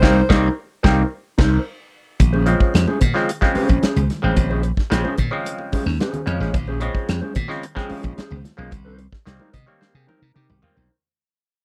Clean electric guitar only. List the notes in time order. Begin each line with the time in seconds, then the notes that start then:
0.02 D#4 A#4 C5
0.29 D#4 A#4 C5
0.83 D#4 A#4 C5
1.38 D#4 A#4 C5
2.20 muted clean electric guitar stroke
2.33 C#4 G#4 C5
2.47 muted clean electric guitar stroke
2.60 muted clean electric guitar stroke
2.74 muted clean electric guitar stroke
2.87 C#4 G#4 C5
3.01 muted clean electric guitar stroke
3.15 muted clean electric guitar stroke
3.42 muted clean electric guitar stroke
3.55 C#4 G#4 C5
3.69 muted clean electric guitar stroke
3.82 C#4 G#4 C5
4.10 muted clean electric guitar stroke
4.23 C#4 G#4 C5
4.36 muted clean electric guitar stroke
4.50 C#4 G#4 C5
4.64 muted clean electric guitar stroke
4.77 muted clean electric guitar stroke
4.91 muted clean electric guitar stroke
5.04 C#4 G#4 C5
5.18 muted clean electric guitar stroke
5.32 muted clean electric guitar stroke
5.59 muted clean electric guitar stroke
5.72 C#4 G#4 C5
5.86 muted clean electric guitar stroke
6.00 C#4 G#4 C5
6.40 C#4 G#4 C5
6.54 muted clean electric guitar stroke
6.68 C#4 G#4 C5
6.82 muted clean electric guitar stroke
6.95 muted clean electric guitar stroke
7.08 muted clean electric guitar stroke
7.21 C#4 G#4 C5
7.35 muted clean electric guitar stroke
7.49 muted clean electric guitar stroke
7.76 muted clean electric guitar stroke
7.89 C#4 G#4 C5
8.03 muted clean electric guitar stroke
8.16 C#4 G#4 C5
8.44 muted clean electric guitar stroke
8.57 C#4 G#4 C5
8.71 muted clean electric guitar stroke
8.85 D#4 A#4 C5
8.99 muted clean electric guitar stroke
9.13 muted clean electric guitar stroke
9.26 muted clean electric guitar stroke
9.40 D#4 A#4 C5
9.54 muted clean electric guitar stroke
9.67 muted clean electric guitar stroke
9.94 muted clean electric guitar stroke
10.07 D#4 A#4 C5
10.21 muted clean electric guitar stroke
10.34 D#4 A#4 C5
10.62 muted clean electric guitar stroke
10.75 D#4 A#4 C5